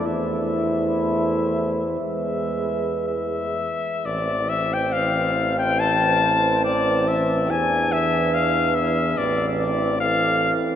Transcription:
X:1
M:4/4
L:1/16
Q:1/4=70
K:Am
V:1 name="Cornet"
e8 e4 e4 | d2 e g f3 g a4 d2 e2 | ^g2 e2 f2 e2 d2 d2 f3 z |]
V:2 name="French horn section"
c8 B6 z2 | c16 | B12 A4 |]
V:3 name="Trombone section"
E12 z4 | C16 | D8 C8 |]
V:4 name="Trombone" clef=bass
A,8 ^G,6 z2 | E,16- | E,8 E,8 |]
V:5 name="Tuba" clef=bass
E,,8 E,,6 z2 | A,,,16 | E,,8 A,,,6 z2 |]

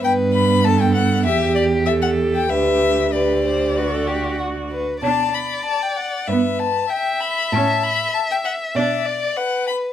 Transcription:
X:1
M:4/4
L:1/16
Q:1/4=97
K:G
V:1 name="Violin"
g2 b2 a g f2 e2 d2 e f2 g | e4 d8- d2 z2 | [K:Bm] a2 b2 a g f2 e2 a2 g2 b2 | a2 b2 a g f2 e2 d2 f2 b2 |]
V:2 name="Violin"
B4 A4 G4 A4 | B4 B2 c2 B A G2 F2 B2 | [K:Bm] d8 B4 e4- | e8 d4 B4 |]
V:3 name="Viola"
B,8 G4 G4 | G4 G4 F6 z2 | [K:Bm] D2 z6 B,2 z6 | C2 z6 D2 z6 |]
V:4 name="Cello" clef=bass
G,,8 E,,8 | D,,12- D,,2 z2 | [K:Bm] B,,4 z4 G,,4 z4 | A,,4 z4 B,,4 z4 |]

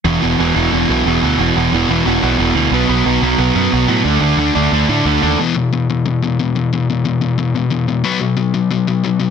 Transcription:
X:1
M:4/4
L:1/8
Q:1/4=180
K:Bdor
V:1 name="Overdriven electric guitar" clef=bass
[E,,B,,E,] [E,,B,,E,] [E,,B,,E,] [E,,B,,E,] [E,,B,,E,] [E,,B,,E,] [E,,B,,E,] [E,,B,,E,] | [E,,B,,E,] [E,,B,,E,] [E,,B,,E,] [E,,B,,E,] [E,,B,,E,] [E,,B,,E,] [E,,B,,E,] [E,,B,,E,] | [B,,F,B,] [B,,F,B,] [B,,F,B,] [B,,F,B,] [B,,F,B,] [B,,F,B,] [B,,F,B,] [B,,F,B,] | [D,A,D] [D,A,D] [D,A,D] [D,A,D] [D,A,D] [D,A,D] [D,A,D] [D,A,D] |
z8 | z8 | z8 |]
V:2 name="Distorted electric guitar" clef=bass
[E,,B,,E,] [E,,B,,E,] [E,,B,,E,] [E,,B,,E,] [E,,B,,E,] [E,,B,,E,] [E,,B,,E,] [E,,B,,E,] | [E,,B,,E,] [E,,B,,E,] [E,,B,,E,] [E,,B,,E,] [E,,B,,E,] [E,,B,,E,] [E,,B,,E,] [E,,B,,E,] | [B,,F,B,] [B,,F,B,] [B,,F,B,] [B,,F,B,] [B,,F,B,] [B,,F,B,] [B,,F,B,] [B,,F,B,] | [D,A,D] [D,A,D] [D,A,D] [D,A,D] [D,A,D] [D,A,D] [D,A,D] [D,A,D] |
[E,,B,,E,] [E,,B,,] [E,,B,,] [E,,B,,] [E,,B,,] [E,,B,,] [E,,B,,] [E,,B,,] | [E,,B,,] [E,,B,,] [E,,B,,] [E,,B,,] [E,,B,,] [E,,B,,] [E,,B,,] [E,,B,,] | [B,,F,B,] [B,,F,] [B,,F,] [B,,F,] [B,,F,] [B,,F,] [B,,F,] [B,,F,] |]
V:3 name="Picked electric bass" clef=bass
E,,, E,,, E,,, E,,, E,,, B,,, E,,, D,, | E,,, E,,, E,,, E,,, E,,, B,,, E,,, D,, | B,,, B,,, B,,, B,,, B,,, F,, B,,, A,, | D,, D,, D,, D,, D,, A,, D,, ^D,, |
z8 | z8 | z8 |]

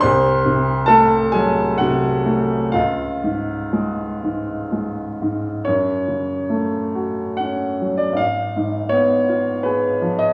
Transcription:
X:1
M:3/4
L:1/16
Q:1/4=69
K:C#phr
V:1 name="Upright piano"
[^B^b]4 [Aa]2 [Gg]2 [Ff]4 | [^E^e]8 z4 | c8 f3 d | =f4 c4 _c3 ^d |]
V:2 name="Upright piano" clef=bass
^B,,,2 ^B,,2 A,2 F,2 B,,2 A,2 | C,,2 G,,2 G,2 G,,2 G,2 G,,2 | F,,2 C,2 A,2 F2 C2 F,2 | _A,,,2 _A,,2 _C2 =F2 _A2 =F,2 |]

